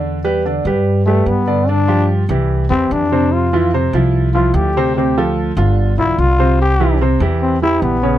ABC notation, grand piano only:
X:1
M:4/4
L:1/8
Q:1/4=147
K:C
V:1 name="Grand piano"
[D,Dd] [G,GB] [D,Dd] [G,GB]2 [G,GB]2 [D,Dd] | [D,Dd] [F,FG]2 [E,EG]2 [E,EG]2 [C,Cc]- | [C,Cc] [E,EF] [C,Cc] [F,EF]2 [F,EF]2 [C,Cc] | [C,Cc] [F,FA]2 [D,DF]2 [D,DF]2 [C,Cc]- |
[C,Cc] [E,EG] [C,Cc] [E,EG]2 [E,EG]2 [_D,_D_d] |]